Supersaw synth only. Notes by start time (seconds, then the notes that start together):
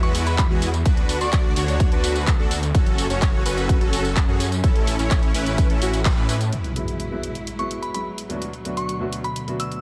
0.03 G#3 B3 E4 F#4 B4
0.50 G#3 B3 E4 F#4 G#4
0.86 D4 F#4 B4
1.21 D4 F#4 D5
1.57 D4 F#4 C#5
1.92 D4 F#4 B4
2.39 D4 F#4 A4
2.75 C#4 F#4 A4
3.10 C#4 F#4 C#5
3.45 C#4 F#4 B4
3.81 C#4 F#4 A4
4.28 C#4 F#4 G#4
4.64 C#4 E4 A4
4.99 C#4 E4 C#5
5.35 C#4 E4 B4
5.70 C#4 E4 A4
5.82 C#4 E4 F#4
6.17 C#4 E4 B4